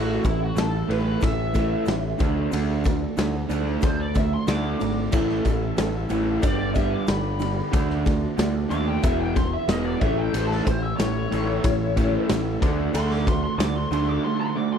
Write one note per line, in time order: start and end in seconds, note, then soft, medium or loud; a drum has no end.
0.00 0.18 A1 medium
0.00 0.39 A2 medium
0.00 0.40 E3 medium
0.00 0.40 A3 medium
0.00 0.39 C#4 medium
0.00 0.38 E4 medium
0.00 0.24 F#4 medium
0.23 0.51 A1 medium
0.23 0.53 A2 medium
0.23 0.53 E3 medium
0.23 0.43 E4 medium
0.23 kick medium
0.23 ride medium
0.23 shaker medium
0.39 0.54 A3 soft
0.39 0.55 C#4 soft
0.39 0.55 E4 medium
0.39 0.58 F#4 medium
0.54 0.82 A1 medium
0.54 0.72 A2 medium
0.54 0.72 E3 medium
0.54 0.73 A3 medium
0.54 0.72 C#4 medium
0.54 0.70 E4 medium
0.54 shaker loud
0.58 0.90 A4 medium
0.58 snare loud
0.58 ride loud
0.71 0.88 A3 soft
0.71 0.89 C#4 soft
0.71 0.89 E4 soft
0.88 1.15 A1 medium
0.88 1.20 A2 medium
0.88 1.52 E3 medium
0.88 1.54 A3 medium
0.88 1.54 C#4 medium
0.88 1.55 E4 medium
0.88 1.22 B4 medium
0.88 snare soft
0.88 ride medium
1.21 1.74 A1 medium
1.21 1.51 A2 medium
1.21 1.51 E3 medium
1.21 2.49 E5 loud
1.21 kick loud
1.21 ride loud
1.21 shaker medium
1.53 1.85 A2 medium
1.53 1.86 E3 medium
1.53 1.86 A3 medium
1.53 1.87 C#4 medium
1.53 1.86 E4 medium
1.53 kick medium
1.53 ride medium
1.53 shaker medium
1.86 2.13 A1 medium
1.86 2.20 A2 medium
1.86 2.18 E3 medium
1.86 2.18 A3 medium
1.86 2.20 C#4 medium
1.86 2.20 E4 medium
1.86 snare loud
1.86 ride medium
1.86 shaker medium
2.18 2.46 D2 medium
2.18 2.36 D3 medium
2.18 2.36 A3 medium
2.18 2.35 D4 medium
2.18 2.34 F#4 medium
2.18 kick loud
2.18 ride medium
2.18 shaker medium
2.35 2.52 A3 soft
2.35 2.52 D4 medium
2.35 2.52 F#4 medium
2.52 3.05 D2 medium
2.52 3.02 D3 medium
2.52 3.02 A3 medium
2.52 3.01 D4 loud
2.52 3.00 F#4 medium
2.52 ride medium
2.52 shaker medium
2.84 3.15 D3 medium
2.84 3.15 A3 medium
2.84 kick medium
2.84 ride medium
2.84 shaker medium
3.01 3.18 A3 soft
3.01 3.19 D4 soft
3.01 3.18 F#4 medium
3.17 3.44 D2 medium
3.17 3.35 D3 loud
3.17 3.35 A3 medium
3.17 3.35 D4 medium
3.17 3.33 F#4 medium
3.17 snare loud
3.17 ride loud
3.17 shaker medium
3.35 3.51 A3 medium
3.35 3.52 D4 medium
3.35 3.51 F#4 medium
3.50 3.76 D2 medium
3.50 3.67 D3 medium
3.50 3.68 A3 medium
3.50 3.67 D4 medium
3.50 ride medium
3.50 shaker medium
3.54 3.65 F#4 medium
3.67 4.15 A3 soft
3.67 4.16 D4 soft
3.67 4.16 F#4 soft
3.81 4.35 D2 medium
3.81 4.12 D3 medium
3.81 4.12 A3 medium
3.81 4.00 C5 medium
3.81 kick loud
3.81 ride medium
3.81 shaker medium
4.00 4.17 D5 medium
4.15 4.32 D3 medium
4.15 4.32 A3 medium
4.15 4.33 D4 medium
4.15 4.32 F#4 medium
4.15 4.32 E5 medium
4.15 kick medium
4.15 ride medium
4.15 shaker medium
4.33 4.48 A3 soft
4.33 4.48 D4 soft
4.33 4.49 F#4 soft
4.33 4.49 C6 loud
4.47 4.74 D2 medium
4.47 4.80 D3 medium
4.47 4.81 A3 medium
4.47 4.82 D4 medium
4.47 4.82 F#4 medium
4.47 5.12 D6 medium
4.47 snare loud
4.47 ride loud
4.47 shaker medium
4.80 5.07 G#1 medium
4.80 4.97 D3 soft
4.80 4.98 A3 medium
4.80 4.98 D4 medium
4.80 4.96 F#4 medium
4.80 ride medium
4.80 shaker medium
4.97 5.13 A3 soft
4.97 5.14 D4 soft
4.97 5.14 F#4 soft
5.12 5.39 A1 medium
5.12 5.62 A2 medium
5.12 5.62 E3 medium
5.12 5.63 A3 medium
5.12 6.42 C#4 medium
5.12 5.63 C#4 medium
5.12 6.42 E4 medium
5.12 6.42 A4 medium
5.12 5.61 A4 medium
5.12 6.42 E5 medium
5.12 kick loud
5.12 crash medium
5.12 shaker medium
5.29 snare soft
5.44 5.71 A1 medium
5.44 5.74 A2 medium
5.44 5.75 E3 medium
5.44 kick medium
5.44 ride medium
5.44 shaker medium
5.63 5.79 A3 soft
5.63 5.79 C#4 soft
5.63 5.79 A4 medium
5.78 6.04 A1 loud
5.78 5.95 A2 medium
5.78 5.95 E3 medium
5.78 5.96 A3 medium
5.78 5.96 C#4 medium
5.78 5.94 A4 loud
5.78 snare loud
5.78 ride medium
5.78 shaker loud
5.95 6.11 A3 soft
5.95 6.12 C#4 soft
5.95 6.11 A4 medium
6.10 6.37 A1 medium
6.10 6.41 A2 medium
6.10 6.27 E3 medium
6.10 6.28 A3 medium
6.10 6.28 C#4 medium
6.10 ride medium
6.10 shaker medium
6.15 6.27 A4 medium
6.28 6.44 A3 soft
6.28 6.45 C#4 soft
6.28 6.44 A4 medium
6.41 6.95 G1 medium
6.41 6.76 G2 medium
6.41 6.76 D3 medium
6.41 6.75 G3 medium
6.41 7.71 B3 medium
6.41 6.76 B3 medium
6.41 7.71 D4 medium
6.41 7.72 G4 medium
6.41 7.71 D5 medium
6.41 6.58 D5 loud
6.41 kick loud
6.41 ride loud
6.41 shaker medium
6.45 6.77 D4 medium
6.45 6.77 G4 medium
6.59 6.75 D5 medium
6.74 7.06 G2 medium
6.74 7.06 D3 medium
6.74 7.08 G3 medium
6.74 7.09 B3 medium
6.74 7.09 D4 medium
6.74 6.92 E5 medium
6.74 kick medium
6.74 ride medium
6.74 shaker medium
6.78 7.09 G4 medium
6.91 7.08 D6 loud
7.07 7.60 G1 medium
7.07 7.41 G2 medium
7.07 7.42 D3 medium
7.07 7.40 G3 medium
7.07 7.42 B3 medium
7.07 7.42 D4 medium
7.07 7.42 G4 medium
7.07 8.35 B5 loud
7.07 snare loud
7.07 ride loud
7.07 shaker medium
7.40 7.70 G2 medium
7.40 7.70 D3 medium
7.40 7.58 G3 medium
7.40 7.58 B3 medium
7.40 7.57 D4 medium
7.40 ride medium
7.40 shaker medium
7.44 7.56 G4 medium
7.57 7.74 G3 soft
7.57 7.74 B3 soft
7.57 7.74 D4 medium
7.57 7.74 G4 soft
7.72 8.26 D2 medium
7.72 8.23 D3 medium
7.72 9.02 A3 medium
7.72 8.23 A3 medium
7.72 9.02 D4 medium
7.72 8.24 D4 medium
7.72 9.02 F#4 medium
7.72 8.22 F#4 medium
7.72 9.02 D5 medium
7.72 kick loud
7.72 ride loud
7.72 shaker loud
7.90 snare soft
8.05 8.35 D3 medium
8.05 8.36 A3 medium
8.05 kick medium
8.05 ride medium
8.05 shaker medium
8.24 8.38 A3 soft
8.24 8.39 D4 medium
8.24 8.39 F#4 medium
8.38 8.65 D2 medium
8.38 8.55 D3 medium
8.38 8.55 A3 medium
8.38 8.54 D4 medium
8.38 8.52 F#4 medium
8.38 snare loud
8.38 ride loud
8.38 shaker loud
8.54 8.69 A3 soft
8.54 8.70 D4 soft
8.54 8.71 F#4 medium
8.69 8.97 D#2 medium
8.69 9.02 D3 medium
8.69 9.03 A3 medium
8.69 9.03 D4 medium
8.69 9.04 F#4 medium
8.69 8.87 D6 loud
8.69 ride medium
8.69 shaker medium
8.88 9.04 G5 medium
9.02 9.56 E1 medium
9.02 9.36 E2 medium
9.02 9.36 B2 medium
9.02 9.34 E3 medium
9.02 9.34 G#3 medium
9.02 10.00 B3 medium
9.02 9.36 B3 medium
9.02 9.36 E4 medium
9.02 10.01 E4 medium
9.02 10.01 G#4 medium
9.02 9.19 E5 loud
9.02 10.01 E5 medium
9.02 kick loud
9.02 ride loud
9.02 shaker loud
9.19 9.36 G5 medium
9.35 9.66 E2 medium
9.35 9.66 B2 medium
9.35 9.68 E3 medium
9.35 9.69 G#3 medium
9.35 9.69 B3 medium
9.35 9.70 E4 medium
9.35 9.52 C6 loud
9.35 kick medium
9.35 ride medium
9.35 shaker medium
9.53 9.69 E5 loud
9.68 9.94 E1 loud
9.68 10.02 E2 medium
9.68 10.02 B2 medium
9.68 10.01 E3 medium
9.68 10.02 G#3 medium
9.68 10.03 B3 medium
9.68 10.03 E4 medium
9.68 9.85 D#5 loud
9.68 snare loud
9.68 ride medium
9.68 shaker medium
9.85 10.01 D5 medium
10.01 10.28 A1 medium
10.01 10.32 A2 medium
10.01 10.18 E3 medium
10.01 10.19 A3 medium
10.01 12.60 C#4 medium
10.01 10.17 C#4 medium
10.01 12.60 E4 medium
10.01 12.59 A4 medium
10.01 10.17 E5 medium
10.01 12.59 E5 medium
10.01 kick loud
10.01 ride medium
10.05 10.17 E4 medium
10.18 10.34 E4 medium
10.18 10.34 G5 medium
10.33 10.60 A1 medium
10.33 10.83 A2 medium
10.33 10.83 E3 medium
10.33 10.83 A3 medium
10.33 10.83 C#4 medium
10.33 10.82 E4 medium
10.33 10.47 C5 medium
10.33 ride medium
10.33 shaker loud
10.47 10.64 A4 medium
10.51 snare soft
10.65 10.93 A1 medium
10.65 10.96 A2 medium
10.65 10.96 E3 medium
10.65 10.82 C5 medium
10.65 kick medium
10.65 ride medium
10.65 shaker medium
10.83 10.99 A3 soft
10.83 10.99 C#4 soft
10.83 10.99 E4 medium
10.83 10.97 E5 loud
10.97 11.25 A1 medium
10.97 11.15 A2 medium
10.97 11.16 E3 medium
10.97 11.16 A3 medium
10.97 11.15 C#4 loud
10.97 11.14 E4 medium
10.97 12.24 C#5 loud
10.97 snare loud
10.97 ride loud
10.97 shaker loud
11.15 11.32 A3 soft
11.15 11.32 C#4 soft
11.15 11.32 E4 medium
11.32 11.58 A1 medium
11.32 11.62 A2 medium
11.32 11.96 E3 medium
11.32 11.98 A3 medium
11.32 11.98 C#4 medium
11.32 11.98 E4 medium
11.32 snare soft
11.32 ride medium
11.32 shaker medium
11.63 12.16 A1 medium
11.63 11.93 A2 medium
11.63 11.93 E3 medium
11.63 kick loud
11.63 ride loud
11.63 shaker medium
11.96 12.27 A2 medium
11.96 12.13 E3 medium
11.96 12.14 A3 medium
11.96 12.14 C#4 medium
11.96 12.13 E4 medium
11.96 kick medium
11.96 ride medium
11.96 shaker medium
12.14 12.30 A3 soft
12.14 12.30 C#4 medium
12.14 12.30 E4 medium
12.29 12.56 A1 loud
12.29 12.62 A2 medium
12.29 12.62 E3 medium
12.29 12.63 A3 medium
12.29 12.63 C#4 medium
12.29 12.63 E4 medium
12.29 snare loud
12.29 ride loud
12.29 shaker medium
12.62 12.88 D2 medium
12.62 12.78 D3 medium
12.62 12.79 A3 medium
12.62 14.78 D4 medium
12.62 12.79 D4 medium
12.62 14.78 F#4 medium
12.62 12.78 F#4 medium
12.62 14.78 A4 medium
12.62 14.78 F#5 medium
12.62 kick loud
12.62 ride medium
12.62 shaker medium
12.80 12.95 A3 soft
12.80 12.95 D4 medium
12.80 12.95 F#4 medium
12.94 13.46 D2 medium
12.94 13.43 D3 medium
12.94 13.44 A3 medium
12.94 13.44 D4 medium
12.94 13.43 F#4 medium
12.94 13.11 C6 loud
12.94 ride loud
12.94 shaker medium
13.10 13.27 D6 loud
13.10 snare soft
13.26 13.56 D3 medium
13.26 13.56 A3 medium
13.26 13.43 C6 loud
13.26 kick medium
13.26 ride medium
13.26 shaker medium
13.44 13.59 A3 soft
13.44 13.59 D4 soft
13.44 13.60 F#4 medium
13.44 13.58 C6 loud
13.58 13.85 D2 medium
13.58 13.75 D3 medium
13.58 13.76 A3 medium
13.58 13.75 D4 medium
13.58 13.74 F#4 medium
13.58 13.75 D6 loud
13.58 snare loud
13.58 ride loud
13.58 shaker medium
13.75 13.91 A3 soft
13.75 13.92 D4 soft
13.75 13.92 F#4 medium
13.75 13.92 C6 loud
13.91 14.17 D2 medium
13.91 14.08 D3 medium
13.91 14.08 A3 medium
13.91 14.07 D4 medium
13.91 14.06 F#4 medium
13.91 14.09 C6 loud
13.91 ride medium
13.91 shaker medium
14.07 14.56 A3 soft
14.07 14.57 D4 soft
14.07 14.56 F#4 medium
14.07 14.24 D6 medium
14.23 14.53 D3 medium
14.23 14.53 A3 medium
14.23 14.40 C6 loud
14.41 14.56 C6 medium
14.56 14.73 D3 medium
14.56 14.73 A3 medium
14.56 14.73 D4 medium
14.56 14.72 F#4 medium
14.56 14.72 D6 loud
14.73 14.78 D4 soft
14.73 14.78 F#4 medium
14.73 14.78 C6 loud